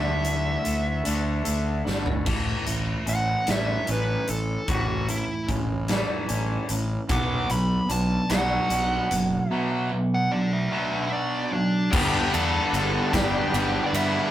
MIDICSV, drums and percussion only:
0, 0, Header, 1, 2, 480
1, 0, Start_track
1, 0, Tempo, 804290
1, 1353, Time_signature, 6, 3, 24, 8
1, 8540, End_track
2, 0, Start_track
2, 0, Title_t, "Drums"
2, 147, Note_on_c, 9, 42, 58
2, 206, Note_off_c, 9, 42, 0
2, 388, Note_on_c, 9, 42, 49
2, 448, Note_off_c, 9, 42, 0
2, 628, Note_on_c, 9, 42, 74
2, 688, Note_off_c, 9, 42, 0
2, 867, Note_on_c, 9, 42, 67
2, 927, Note_off_c, 9, 42, 0
2, 1114, Note_on_c, 9, 38, 51
2, 1174, Note_off_c, 9, 38, 0
2, 1229, Note_on_c, 9, 43, 72
2, 1289, Note_off_c, 9, 43, 0
2, 1349, Note_on_c, 9, 49, 105
2, 1351, Note_on_c, 9, 36, 103
2, 1409, Note_off_c, 9, 49, 0
2, 1410, Note_off_c, 9, 36, 0
2, 1591, Note_on_c, 9, 42, 66
2, 1651, Note_off_c, 9, 42, 0
2, 1832, Note_on_c, 9, 42, 59
2, 1892, Note_off_c, 9, 42, 0
2, 2071, Note_on_c, 9, 42, 87
2, 2077, Note_on_c, 9, 38, 92
2, 2130, Note_off_c, 9, 42, 0
2, 2137, Note_off_c, 9, 38, 0
2, 2311, Note_on_c, 9, 42, 70
2, 2371, Note_off_c, 9, 42, 0
2, 2552, Note_on_c, 9, 42, 57
2, 2612, Note_off_c, 9, 42, 0
2, 2793, Note_on_c, 9, 42, 77
2, 2794, Note_on_c, 9, 36, 96
2, 2853, Note_off_c, 9, 42, 0
2, 2854, Note_off_c, 9, 36, 0
2, 3035, Note_on_c, 9, 42, 63
2, 3095, Note_off_c, 9, 42, 0
2, 3274, Note_on_c, 9, 36, 70
2, 3274, Note_on_c, 9, 42, 54
2, 3334, Note_off_c, 9, 36, 0
2, 3334, Note_off_c, 9, 42, 0
2, 3511, Note_on_c, 9, 42, 69
2, 3518, Note_on_c, 9, 38, 93
2, 3571, Note_off_c, 9, 42, 0
2, 3578, Note_off_c, 9, 38, 0
2, 3753, Note_on_c, 9, 42, 66
2, 3813, Note_off_c, 9, 42, 0
2, 3992, Note_on_c, 9, 42, 59
2, 4052, Note_off_c, 9, 42, 0
2, 4233, Note_on_c, 9, 42, 82
2, 4234, Note_on_c, 9, 36, 102
2, 4293, Note_off_c, 9, 42, 0
2, 4294, Note_off_c, 9, 36, 0
2, 4474, Note_on_c, 9, 42, 59
2, 4534, Note_off_c, 9, 42, 0
2, 4712, Note_on_c, 9, 42, 60
2, 4772, Note_off_c, 9, 42, 0
2, 4952, Note_on_c, 9, 42, 78
2, 4959, Note_on_c, 9, 38, 105
2, 5012, Note_off_c, 9, 42, 0
2, 5018, Note_off_c, 9, 38, 0
2, 5194, Note_on_c, 9, 42, 65
2, 5254, Note_off_c, 9, 42, 0
2, 5437, Note_on_c, 9, 42, 71
2, 5497, Note_off_c, 9, 42, 0
2, 7118, Note_on_c, 9, 49, 124
2, 7119, Note_on_c, 9, 36, 119
2, 7178, Note_off_c, 9, 49, 0
2, 7179, Note_off_c, 9, 36, 0
2, 7364, Note_on_c, 9, 51, 75
2, 7423, Note_off_c, 9, 51, 0
2, 7603, Note_on_c, 9, 51, 71
2, 7663, Note_off_c, 9, 51, 0
2, 7838, Note_on_c, 9, 36, 76
2, 7841, Note_on_c, 9, 51, 91
2, 7848, Note_on_c, 9, 38, 111
2, 7898, Note_off_c, 9, 36, 0
2, 7901, Note_off_c, 9, 51, 0
2, 7907, Note_off_c, 9, 38, 0
2, 8082, Note_on_c, 9, 51, 86
2, 8142, Note_off_c, 9, 51, 0
2, 8322, Note_on_c, 9, 51, 75
2, 8382, Note_off_c, 9, 51, 0
2, 8540, End_track
0, 0, End_of_file